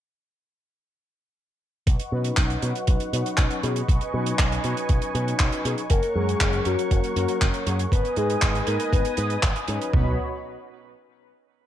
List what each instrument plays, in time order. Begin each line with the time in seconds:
1.87 picked electric bass B1, analog synth pad B4 D#5 F#5 C#6, kick, closed hi-hat
1.99 closed hi-hat
2.12 picked electric bass B2, analog polysynth F#3 C#4 D#4 B4
2.24 closed hi-hat
2.37 picked electric bass B1, kick, clap, closed hi-hat
2.50 closed hi-hat
2.62 picked electric bass B2, analog polysynth F#3 C#4 D#4 B4, closed hi-hat
2.75 closed hi-hat
2.87 picked electric bass B1, kick, closed hi-hat
3.00 closed hi-hat
3.13 picked electric bass B2, analog polysynth F#3 C#4 D#4 B4, closed hi-hat
3.26 closed hi-hat
3.37 picked electric bass B1, kick, clap, closed hi-hat
3.51 closed hi-hat
3.63 picked electric bass B2, analog polysynth F#3 C#4 D#4 G#4, closed hi-hat
3.76 closed hi-hat
3.89 picked electric bass B1, analog synth pad G#5, kick, closed hi-hat
4.01 closed hi-hat
4.14 picked electric bass B2, analog polysynth F#3 C#4 D#4 B4
4.26 closed hi-hat
4.39 picked electric bass B1, kick, clap, closed hi-hat
4.52 closed hi-hat
4.64 picked electric bass B2, analog polysynth F#3 C#4 D#4 B4, closed hi-hat
4.77 closed hi-hat
4.89 picked electric bass B1, kick, closed hi-hat
5.02 closed hi-hat
5.15 picked electric bass B2, analog polysynth F#3 C#4 D#4 B4, closed hi-hat
5.28 closed hi-hat
5.39 picked electric bass B1, kick, clap, closed hi-hat
5.52 closed hi-hat
5.65 picked electric bass B2, analog polysynth F#3 C#4 D#4 G#4, closed hi-hat
5.78 closed hi-hat
5.90 picked electric bass F#1, soft synth lead A#4, analog synth pad A#4 C#5 F#5 C#6, kick, closed hi-hat
6.03 closed hi-hat
6.15 picked electric bass F#2, analog polysynth F#3 A#3 C#4 A#4, soft synth lead G#4
6.29 closed hi-hat
6.41 picked electric bass F#1, kick, clap, closed hi-hat
6.53 closed hi-hat
6.65 picked electric bass F#2, analog polysynth F#3 A#3 C#4 A#4, soft synth lead F#4, closed hi-hat
6.79 closed hi-hat
6.91 picked electric bass F#1, soft synth lead F#4, kick, closed hi-hat
7.04 closed hi-hat
7.16 picked electric bass F#2, analog polysynth F#3 A#3 C#4 A#4, closed hi-hat
7.28 closed hi-hat
7.41 picked electric bass F#1, kick, clap, closed hi-hat
7.54 closed hi-hat
7.67 picked electric bass F#2, analog polysynth F#3 A#3 C#4 G#4, closed hi-hat
7.79 closed hi-hat
7.92 picked electric bass G#1, analog synth pad B4 D#5 G#5 D#6, soft synth lead B4, kick, closed hi-hat
8.05 closed hi-hat
8.16 picked electric bass G#2, analog polysynth G#3 B3 D#4 B4, soft synth lead G#4, closed hi-hat
8.30 closed hi-hat
8.42 picked electric bass G#1, kick, clap, closed hi-hat
8.55 closed hi-hat
8.67 picked electric bass G#2, analog polysynth G#3 B3 D#4 B4, soft synth lead A#4, closed hi-hat
8.80 closed hi-hat
8.93 picked electric bass G#1, soft synth lead B4, kick, closed hi-hat
9.05 closed hi-hat
9.17 picked electric bass G#2, analog polysynth G#3 B3 D#4 B4, closed hi-hat
9.30 closed hi-hat
9.43 picked electric bass G#1, kick, clap, closed hi-hat
9.56 closed hi-hat
9.68 picked electric bass G#2, analog polysynth F#3 C#4 D#4 B4, closed hi-hat
9.81 closed hi-hat
9.93 picked electric bass B1, analog polysynth F#3 C#4 D#4 B4, analog synth pad F#4 C#5 D#5 B5, soft synth lead B4, kick, floor tom